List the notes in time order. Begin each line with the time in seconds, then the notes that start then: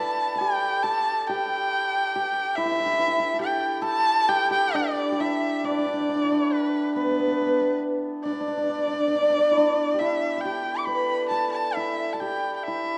Already playing: E4 G4 A4 B4 D5 A5
0.35 A4 G5
0.41 G4
0.83 A4 A5
1.27 G4 G5
2.16 G4
2.56 E4 E5
2.65 E4
2.71 E4
2.80 E4
2.86 E4
2.93 E4
2.99 E4
3.08 E4
3.19 E4
3.34 A4
3.39 G4 G5
3.82 A4 A5
4.29 G4 G5
4.51 G4 G5
4.74 D4 D5
5.12 G4
5.20 E4 E5
5.64 D4 D5
5.71 D4
5.78 D4
5.86 D4
5.94 D4
6.01 D4
6.09 D4
6.16 D4
6.24 E4
6.32 D4
6.53 B4
6.95 B3 B4
7.06 B3
7.11 B3
7.19 B3
7.27 B3
7.32 B3
7.41 B3
7.46 B3
7.61 B3
8.24 D4 D5
8.32 D4
8.40 D4
8.48 D4
8.57 D4
8.64 D4
8.69 D4
8.78 D4
8.87 D4
8.93 D4
9.00 D4
9.08 D4
9.15 D4
9.22 D4
9.30 D4
9.39 D4
9.51 E4
9.57 D4
9.94 G4
9.99 E4 E5
10.38 A4 G5
10.45 G4
10.78 D6
10.86 B4 B5
11.29 A4 A5
11.52 A5
11.74 E4 E5
12.13 A4 A5
12.20 G4 G5
12.56 G5
12.63 E5
12.68 E4